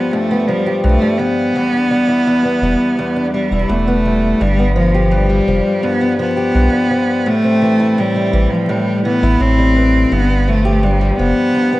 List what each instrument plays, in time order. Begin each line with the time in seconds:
Already playing: steel-string acoustic guitar G2 F3 G3 B3 G4
0.04 cello B3
0.12 steel-string acoustic guitar G2, cello A3
0.31 steel-string acoustic guitar B3
0.47 steel-string acoustic guitar F3, cello G3
0.66 steel-string acoustic guitar G4
0.84 sub bass B1, steel-string acoustic guitar G2, cello A3
1.02 steel-string acoustic guitar G3
1.19 steel-string acoustic guitar F3, cello B3
1.56 steel-string acoustic guitar E2
1.73 steel-string acoustic guitar D4
1.91 steel-string acoustic guitar G3
2.08 steel-string acoustic guitar E4
2.27 steel-string acoustic guitar E2
2.45 steel-string acoustic guitar B3
2.62 sub bass E1, steel-string acoustic guitar G3
2.99 steel-string acoustic guitar E2
3.16 steel-string acoustic guitar D4
3.33 cello G3, steel-string acoustic guitar G3
3.51 sub bass E1, steel-string acoustic guitar E4
3.69 sub bass E1, steel-string acoustic guitar E2, cello A3
3.88 steel-string acoustic guitar B3
4.05 steel-string acoustic guitar G3
4.41 sub bass G1, steel-string acoustic guitar G2, cello G3
4.59 steel-string acoustic guitar B3
4.76 steel-string acoustic guitar F3, cello F3
4.94 steel-string acoustic guitar G4
5.11 steel-string acoustic guitar G2, cello G3
5.30 steel-string acoustic guitar G3
5.48 sub bass F1, steel-string acoustic guitar F3
5.83 steel-string acoustic guitar G2, cello B3
6.01 steel-string acoustic guitar B3
6.19 steel-string acoustic guitar F3, cello B3
6.37 steel-string acoustic guitar G4
6.55 sub bass B1, steel-string acoustic guitar G2
6.73 steel-string acoustic guitar G3
6.91 steel-string acoustic guitar F3
7.26 steel-string acoustic guitar A2, cello A3
7.44 steel-string acoustic guitar C4
7.62 steel-string acoustic guitar E3
7.80 steel-string acoustic guitar E4
7.98 steel-string acoustic guitar A2, cello G3
8.15 steel-string acoustic guitar G3
8.33 sub bass A1, steel-string acoustic guitar E3
8.52 cello F3
8.69 steel-string acoustic guitar A2, cello G3
9.05 steel-string acoustic guitar E3, cello B3
9.23 sub bass A1, steel-string acoustic guitar E4
9.40 sub bass A1, steel-string acoustic guitar A2, cello C4
9.58 steel-string acoustic guitar G3
9.76 steel-string acoustic guitar E3
10.11 sub bass G1, steel-string acoustic guitar G2, cello B3
10.30 steel-string acoustic guitar B3
10.47 steel-string acoustic guitar F3, cello A3
10.65 steel-string acoustic guitar G4
10.83 steel-string acoustic guitar G2, cello G3
11.01 steel-string acoustic guitar G3
11.18 sub bass F1, steel-string acoustic guitar F3, cello B3
11.55 steel-string acoustic guitar G2
11.73 steel-string acoustic guitar B3